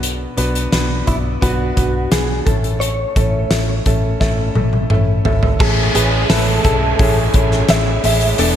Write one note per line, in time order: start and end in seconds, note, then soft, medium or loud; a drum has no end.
0.00 0.25 B1 medium
0.00 0.68 B2 medium
0.00 0.23 B3 medium
0.00 0.24 D4 medium
0.00 0.24 F#4 medium
0.00 0.24 B4 medium
0.00 closed hi-hat medium
0.37 0.66 B1 medium
0.37 0.62 B3 medium
0.37 0.62 D4 medium
0.37 0.63 F#4 medium
0.37 0.63 B4 medium
0.37 closed hi-hat medium
0.55 closed hi-hat soft
0.72 1.01 B1 medium
0.72 0.97 B3 medium
0.72 0.97 D4 medium
0.72 0.97 F#4 medium
0.72 0.98 B4 medium
0.72 snare medium
0.72 closed hi-hat medium
1.07 1.36 B1 medium
1.07 1.32 B3 medium
1.07 1.32 D4 soft
1.07 1.17 E4 medium
1.07 1.32 F#4 medium
1.07 1.33 D5 medium
1.07 kick medium
1.07 closed hi-hat medium
1.41 1.71 B1 medium
1.41 1.67 B3 medium
1.41 1.67 D4 medium
1.41 1.67 F#4 medium
1.41 2.11 F#4 medium
1.41 1.67 B4 medium
1.41 kick medium
1.41 closed hi-hat medium
1.76 2.06 B1 medium
1.76 2.01 B3 medium
1.76 2.02 D4 soft
1.76 2.02 F#4 soft
1.76 2.02 B4 medium
1.76 kick medium
1.76 closed hi-hat medium
2.11 2.40 B1 medium
2.11 2.36 B3 medium
2.11 2.36 D4 soft
2.11 2.37 F#4 medium
2.11 2.45 G#4 medium
2.11 2.37 B4 medium
2.11 snare loud
2.11 closed hi-hat medium
2.46 3.04 A1 medium
2.46 3.47 A2 soft
2.46 3.02 A3 medium
2.46 3.02 C#4 medium
2.46 3.03 E4 medium
2.46 2.55 A4 medium
2.46 3.03 A4 medium
2.46 kick medium
2.46 closed hi-hat medium
2.64 closed hi-hat soft
2.80 3.81 C#5 medium
2.80 closed hi-hat medium
3.16 3.45 A1 medium
3.16 3.41 A3 medium
3.16 3.41 C#4 medium
3.16 3.41 E4 medium
3.16 3.41 A4 medium
3.16 kick medium
3.16 closed hi-hat medium
3.50 3.79 A1 medium
3.50 3.76 A3 medium
3.50 3.76 C#4 medium
3.50 3.76 E4 medium
3.50 3.76 A4 medium
3.50 snare loud
3.50 closed hi-hat medium
3.86 4.14 A1 medium
3.86 4.11 A3 medium
3.86 4.11 C#4 medium
3.86 4.11 E4 medium
3.86 4.11 A4 medium
3.86 kick medium
3.86 closed hi-hat medium
4.20 4.49 A1 medium
4.20 4.45 A3 medium
4.20 4.46 C#4 medium
4.20 4.46 E4 medium
4.20 4.46 A4 loud
4.20 kick medium
4.20 snare medium
4.55 4.84 A1 medium
4.55 4.80 A3 medium
4.55 4.80 C#4 medium
4.55 4.81 E4 medium
4.55 4.81 A4 medium
4.55 high tom medium
4.73 high tom soft
4.90 5.19 A1 medium
4.90 5.15 A3 medium
4.90 5.15 C#4 medium
4.90 5.15 E4 medium
4.90 5.16 A4 medium
4.90 mid tom medium
5.25 5.54 G#1 medium
5.25 5.50 A3 medium
5.25 5.50 C#4 medium
5.25 5.50 E4 medium
5.25 5.50 A4 medium
5.25 floor tom medium
5.43 floor tom medium
5.60 5.89 A1 loud
5.60 6.60 A2 medium
5.60 5.95 A2 loud
5.60 5.95 E3 medium
5.60 5.95 G#3 loud
5.60 5.85 A3 medium
5.60 5.85 C#4 medium
5.60 5.95 C#4 medium
5.60 5.85 E4 medium
5.60 5.93 E4 loud
5.60 5.85 G#4 loud
5.60 5.70 A4 medium
5.60 8.36 C#5 medium
5.60 8.56 E5 medium
5.60 8.36 G#5 medium
5.60 kick loud
5.60 crash loud
5.60 downlifter medium
5.94 6.23 A1 medium
5.94 6.29 G#3 soft
5.94 6.20 A3 medium
5.94 6.20 C#4 medium
5.94 6.29 C#4 medium
5.94 6.30 E4 medium
5.94 6.20 E4 medium
5.94 6.30 G#4 medium
5.94 6.20 B4 medium
5.94 hi-hat pedal medium
5.94 open hi-hat medium
6.29 6.58 A1 loud
6.29 6.64 A2 medium
6.29 6.65 E3 medium
6.29 6.65 G#3 medium
6.29 6.54 A3 medium
6.29 6.55 C#4 medium
6.29 6.64 C#4 medium
6.29 6.55 E4 medium
6.29 6.63 E4 medium
6.29 6.64 A4 medium
6.29 6.55 B4 medium
6.29 snare loud
6.29 hi-hat pedal medium
6.29 open hi-hat medium
6.64 6.93 B1 medium
6.64 6.98 G#3 medium
6.64 6.89 A3 medium
6.64 6.89 C#4 medium
6.64 6.99 C#4 medium
6.64 6.89 E4 medium
6.64 6.99 E4 medium
6.64 6.90 G#4 medium
6.64 7.70 A4 medium
6.64 kick medium
6.64 hi-hat pedal medium
6.64 open hi-hat medium
6.99 7.28 A1 medium
6.99 7.34 E3 medium
6.99 7.34 G#3 medium
6.99 7.24 A3 medium
6.99 7.24 C#4 medium
6.99 7.33 C#4 medium
6.99 7.24 E4 medium
6.99 7.32 E4 medium
6.99 7.25 G#4 loud
6.99 kick loud
6.99 hi-hat pedal medium
6.99 open hi-hat medium
7.33 7.63 A1 loud
7.33 7.68 G#3 soft
7.33 7.59 A3 medium
7.33 7.59 C#4 medium
7.33 7.69 C#4 soft
7.33 7.69 E4 medium
7.33 7.59 E4 medium
7.33 7.59 G#4 medium
7.33 kick loud
7.33 hi-hat pedal medium
7.33 open hi-hat medium
7.51 snare soft
7.68 7.98 A1 medium
7.68 8.04 A2 medium
7.68 8.04 E3 medium
7.68 8.04 G#3 medium
7.68 7.94 A3 medium
7.68 7.94 C#4 medium
7.68 8.03 C#4 loud
7.68 7.94 E4 medium
7.68 8.02 E4 medium
7.68 7.94 G#4 medium
7.68 8.02 E5 loud
7.68 snare loud
7.68 hi-hat pedal medium
7.68 open hi-hat loud
8.03 8.32 A1 loud
8.03 8.39 G#3 soft
8.03 8.29 A3 medium
8.03 8.29 C#4 medium
8.03 8.39 C#4 medium
8.03 8.38 E4 medium
8.03 8.29 E4 medium
8.03 8.29 G#4 medium
8.03 8.56 E5 medium
8.03 hi-hat pedal medium
8.03 open hi-hat medium
8.21 open hi-hat medium
8.38 8.56 E1 medium
8.38 8.56 E2 medium
8.38 8.56 B2 medium
8.38 8.56 E3 medium
8.38 8.56 A3 medium
8.38 8.56 B3 medium
8.38 8.56 D4 medium
8.38 8.56 D4 loud
8.38 8.56 E4 medium
8.38 8.56 E4 loud
8.38 8.56 A4 loud
8.38 8.56 B4 medium
8.38 8.56 D5 medium
8.38 8.56 B5 medium
8.38 hi-hat pedal medium
8.38 open hi-hat medium